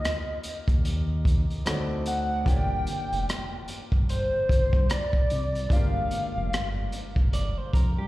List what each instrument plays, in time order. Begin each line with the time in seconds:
Already playing: grand piano A#3 D#4 F4 G4 D#5, analog synth lead D#5
0.05 cross-stick, closed hi-hat
0.43 analog synth bass D#2, closed hi-hat
0.68 analog synth bass D#2, kick, closed hi-hat
0.85 closed hi-hat
1.25 kick, closed hi-hat
1.50 closed hi-hat
1.65 analog synth bass D2, grand piano C4 D#4 F#4 A4 C#5, cross-stick, closed hi-hat
1.74 grand piano D5
2.06 analog synth lead F#5, closed hi-hat
2.45 analog synth bass G1, grand piano A#3 D4 F4 G4, analog synth lead G5, kick, closed hi-hat
2.50 grand piano C#5
2.56 grand piano D5
2.87 closed hi-hat
3.12 analog synth bass F1, closed hi-hat
3.29 cross-stick, closed hi-hat
3.68 analog synth bass G1, closed hi-hat
3.92 analog synth bass G1, kick
4.09 analog synth lead C5, closed hi-hat
4.49 analog synth bass G1, kick, closed hi-hat
4.73 analog synth bass G2, kick
4.90 analog synth lead D5, cross-stick, closed hi-hat
5.13 kick
5.30 analog synth bass C2, closed hi-hat
5.55 closed hi-hat
5.69 analog synth bass G1, grand piano G#3 D4 F4 G4, analog synth lead F5, kick, closed hi-hat
5.74 grand piano A#3 D5
6.11 closed hi-hat
6.36 analog synth bass F1
6.52 analog synth bass G1, cross-stick, closed hi-hat
6.92 closed hi-hat
7.16 analog synth bass G1, kick
7.33 clean electric guitar D5, closed hi-hat
7.58 clean electric guitar C5
7.73 analog synth bass F2, clean electric guitar A#4, kick, closed hi-hat
7.98 analog synth bass G2, clean electric guitar G4